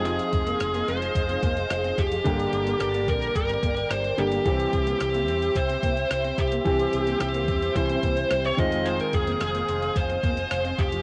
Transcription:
Already playing: F1 F3 C4 D#4 G#4 D#5 F5 C6
0.05 F4 G#4, closed hi-hat
0.19 closed hi-hat
0.33 F1, muted clean electric guitar stroke, kick, closed hi-hat
0.47 A#3, closed hi-hat
0.60 F1, muted clean electric guitar stroke, cross-stick, closed hi-hat
0.74 A#3, closed hi-hat
0.88 F1 C4 C5, closed hi-hat
1.02 closed hi-hat
1.15 F1, muted clean electric guitar stroke, kick, closed hi-hat
1.29 C4, closed hi-hat
1.43 F1 A#3, kick, closed hi-hat
1.57 closed hi-hat
1.70 F1 C5, cross-stick, closed hi-hat
1.84 C4, closed hi-hat
1.98 F1 G4, muted clean electric guitar stroke, kick, closed hi-hat
2.12 F3, closed hi-hat
2.24 G1 D3 G3 A#3 G4 A#4 D5 G5 D6, kick, closed hi-hat
2.40 closed hi-hat
2.53 G1, muted clean electric guitar stroke, closed hi-hat
2.67 A#3, closed hi-hat
2.80 G1 G4, muted clean electric guitar stroke, cross-stick, closed hi-hat
2.94 A#3, closed hi-hat
3.08 A#1 C4 A#4, kick, closed hi-hat
3.22 closed hi-hat
3.35 G1 A#4, muted clean electric guitar stroke, kick, closed hi-hat
3.49 C4, closed hi-hat
3.63 G1 A#3, kick, closed hi-hat
3.77 closed hi-hat
3.90 G1 G3 C5, cross-stick, closed hi-hat
4.04 muted clean electric guitar stroke, closed hi-hat
4.17 G1 D3 G3 A#3 G4, closed hi-hat
4.32 A#3, closed hi-hat
4.44 C2 E3 G3 C4 G4 C5 E5 E6, kick, closed hi-hat
4.60 closed hi-hat
4.73 C2, muted clean electric guitar stroke, kick, closed hi-hat
4.87 A#3, closed hi-hat
5.00 C2 G4, muted clean electric guitar stroke, cross-stick, closed hi-hat
5.14 A#3, closed hi-hat
5.28 E2 C4, closed hi-hat
5.42 closed hi-hat
5.55 C2 C5, muted clean electric guitar stroke, kick, closed hi-hat
5.69 C4, closed hi-hat
5.83 C2 A#3, kick, closed hi-hat
5.97 closed hi-hat
6.11 C2 C5, cross-stick, closed hi-hat
6.24 C4, closed hi-hat
6.38 C2 G4, muted clean electric guitar stroke, kick, closed hi-hat
6.52 A#3, closed hi-hat
6.65 C2 E3 G3 C4 G4, kick, closed hi-hat
6.80 closed hi-hat
6.93 C2, muted clean electric guitar stroke, closed hi-hat
7.07 A#3, closed hi-hat
7.20 C2 G4, muted clean electric guitar stroke, cross-stick, closed hi-hat
7.34 A#3, closed hi-hat
7.48 E2 C4, kick, closed hi-hat
7.62 closed hi-hat
7.75 C2 E3 G3 C4 E4 C5, muted clean electric guitar stroke, kick, closed hi-hat
7.90 C4, closed hi-hat
8.03 C2 A#3, kick, closed hi-hat
8.17 closed hi-hat
8.31 C2 G3 C5, cross-stick, closed hi-hat
8.45 C#5, muted clean electric guitar stroke, closed hi-hat
8.57 F1 D#3 G#3 C4 F4 D#5 F5 G#5 D#6, kick, closed hi-hat
8.72 G#3, closed hi-hat
8.86 F4 C5, closed hi-hat
9.00 A#4, closed hi-hat
9.13 F1 G#4, muted clean electric guitar stroke, kick, closed hi-hat
9.27 A#3, closed hi-hat
9.41 F1 G#4, muted clean electric guitar stroke, cross-stick, closed hi-hat
9.55 A#3, closed hi-hat
9.69 F1 C4, closed hi-hat
9.82 closed hi-hat
9.96 F1 C5, muted clean electric guitar stroke, kick, closed hi-hat
10.10 C4, closed hi-hat
10.23 F1 A#3, kick, closed hi-hat
10.37 closed hi-hat
10.51 F1 C5, cross-stick, closed hi-hat
10.65 C4, closed hi-hat
10.78 F1 G4, muted clean electric guitar stroke, kick, closed hi-hat
10.92 F3, closed hi-hat

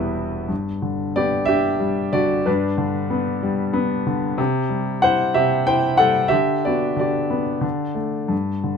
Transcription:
Already playing: E1 E2 G3 B3 E4 G4 B4 E5
0.48 G2
0.82 D3
1.16 B3 G4 D5
1.45 D4 G4 E5
1.80 G3
2.13 D3 F#4 D5
2.46 G2 D4 B4
2.78 D3
3.10 B3
3.43 G3
3.73 B3
4.07 D3
4.38 C3
4.69 G3
5.02 E4 C5 F#5
5.34 C3 G4 E5
5.67 E4 C5 G5
5.97 G3 A4 F#5
6.28 D3 G4 E5
6.65 B3 F#4 D5
6.96 D3 D5
7.01 G4
7.30 B3
7.61 D3
7.95 A3
8.28 G2
8.64 D3

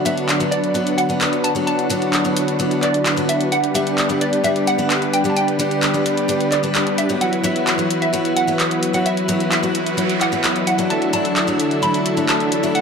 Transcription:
Already playing: D3 F#3 B3 D4 F#4 B4
0.05 F#3 B3 D4 F#4 E5, closed hi-hat
0.17 closed hi-hat
0.29 clap, closed hi-hat
0.40 F#3 B3 D4 F#4, closed hi-hat
0.51 D5, closed hi-hat
0.64 closed hi-hat
0.74 F#3 B3 D4 F#4, closed hi-hat
0.87 closed hi-hat
0.98 F#5, closed hi-hat
1.09 F#3 B3 D4 B4, closed hi-hat
1.21 clap, closed hi-hat
1.33 closed hi-hat
1.44 A5, closed hi-hat
1.55 F#3 B3 D4 F#4, closed hi-hat
1.67 E4 A5, closed hi-hat
1.79 closed hi-hat
1.89 F#3 B3 D4 F#4, closed hi-hat
2.02 closed hi-hat
2.13 clap, closed hi-hat
2.24 F#3 B3 D4 F#4, closed hi-hat
2.37 closed hi-hat
2.48 closed hi-hat
2.59 F#3 B3 D4 F#4, closed hi-hat
2.71 closed hi-hat
2.83 D5, clap, closed hi-hat
2.94 closed hi-hat
3.06 clap, closed hi-hat
3.16 F#3 B3 D4 F#4, closed hi-hat
3.29 E5, closed hi-hat
3.41 closed hi-hat
3.52 G3 D4 G4 B4 F#5, closed hi-hat
3.64 closed hi-hat
3.74 G3 B3 D4 G4 E5, closed hi-hat
3.87 closed hi-hat
3.98 clap, closed hi-hat
4.09 G3 B3 D4 G4, closed hi-hat
4.21 D5, closed hi-hat
4.33 closed hi-hat
4.44 G3 B3 D4 G4 E5, closed hi-hat
4.56 closed hi-hat
4.67 F#5, closed hi-hat
4.78 G3 B3 D4 B4, closed hi-hat
4.90 clap, closed hi-hat
5.02 closed hi-hat
5.14 G5, closed hi-hat
5.24 G3 B3 D4 G4, closed hi-hat
5.30 A5
5.37 G5, closed hi-hat
5.48 closed hi-hat
5.59 G3 B3 D4 G4, closed hi-hat
5.71 closed hi-hat
5.83 clap, closed hi-hat
5.94 G3 B3 D4 G4, closed hi-hat
6.06 closed hi-hat
6.17 closed hi-hat
6.28 G3 B3 D4 G4, closed hi-hat
6.41 closed hi-hat
6.52 D5, clap, closed hi-hat
6.63 G3 B3 D4 B4, closed hi-hat
6.75 clap, closed hi-hat
6.87 closed hi-hat
6.98 E5, closed hi-hat
7.09 F#3 B3 E4 F#4, closed hi-hat
7.21 E3 F#3 E4 F#4 B4 F#5, closed hi-hat
7.33 closed hi-hat
7.43 F#3 B3 E4 F#4 E5, closed hi-hat
7.56 closed hi-hat
7.67 clap, closed hi-hat
7.78 F#3 B3 E4 F#4, closed hi-hat
7.90 closed hi-hat
8.02 E5, closed hi-hat
8.13 F#3 B3 E4 F#4, closed hi-hat
8.25 closed hi-hat
8.37 F#5, closed hi-hat
8.47 F#3 B3 E4 B4, closed hi-hat
8.60 clap, closed hi-hat
8.71 closed hi-hat
8.83 closed hi-hat
8.93 F#3 B3 E4 F#4 F#5, closed hi-hat
9.06 E4 E5, closed hi-hat, noise sweep
9.17 closed hi-hat
9.28 F#3 B3 E4 F#4, closed hi-hat
9.40 closed hi-hat
9.52 E5, clap, closed hi-hat
9.63 F#3 B3 E4 F#4, closed hi-hat
9.75 closed hi-hat
9.86 closed hi-hat
9.97 F#3 B3 E4 F#4, closed hi-hat
10.10 closed hi-hat
10.21 F#5, clap, closed hi-hat
10.32 F#3 B3 E4 B4, closed hi-hat
10.44 clap, closed hi-hat
10.56 closed hi-hat
10.67 F#5, closed hi-hat
10.78 F#3 A3 D4 E4, closed hi-hat
10.90 D3 A3 D4 E4 F#4 A4 E5 A5, closed hi-hat
11.02 closed hi-hat
11.13 F#3 A3 D4 E4 A5, closed hi-hat
11.25 closed hi-hat
11.36 clap, closed hi-hat
11.47 F#3 A3 D4 E4, closed hi-hat
11.60 closed hi-hat
11.71 closed hi-hat
11.82 F#3 A3 D4 E4 B5, closed hi-hat
11.94 closed hi-hat
12.06 closed hi-hat
12.17 F#3 A3 D4 A4, closed hi-hat
12.29 A5, clap, closed hi-hat
12.40 closed hi-hat
12.52 closed hi-hat
12.63 F#3 A3 D4 E4, closed hi-hat
12.75 F#5, closed hi-hat

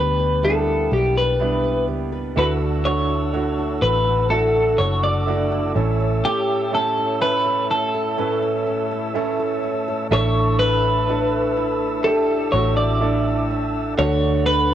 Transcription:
Already playing: D2 B2 G3 B3 D4 G4 B4
0.19 B4
0.43 G3 A#3 B3 D4 E4 A4 B4
0.50 B3
0.68 G4
0.91 B1 D4 G4
1.15 G4 B4
1.39 G3 B3 D4 E4
1.64 B4
1.88 C#2 G4
2.12 B4
2.36 D2 D3 A3 D4 E4 F#4 B4 F#5 A5 E6
2.61 F#4
2.84 A3 D4 E4 F#4 C#5
3.09 F#4
3.33 A3 D4 E4 F#4
3.58 E4
3.82 A1 F#4 B4
4.07 E4
4.30 D3 A3 D4 E4 F#4 A4
4.55 F#4
4.78 F#1 D4 C#5
5.04 F#4 D5
5.26 A3 D4 E4 F#4
5.52 E4
5.75 A1 A2 A3 C#4 E4 A4 C#5 E5 E6
6.00 A4
6.24 A2 G4 A4
6.49 E4
6.72 A3 C#4 E4 G4 A4
6.98 E4
7.20 A3 C#4 E4 A4 B4
7.46 A4
7.70 E4 A4
7.95 A4
8.17 A2 A3 C#4 E4 A4 B4
8.42 E4
8.67 C#4
8.91 E4
9.14 A3 C#4 E4 A4
9.40 A4
9.64 E4
9.88 A4
10.11 A1 A2 A3 D4 E4 A4 C#5 E5 A5 E6
10.59 E4 B4
11.09 A3 D4 E4 A4
11.57 E4
12.04 A3 D4 E4 G4 A4
12.52 A1 A3 D4 E4 F#4 C#5
12.77 D5
13.01 A3 D4 E4 A4
13.51 D4
13.97 D2 D3 A3 D4 F#4 A4 C#5 F#5
14.46 F#4 B4

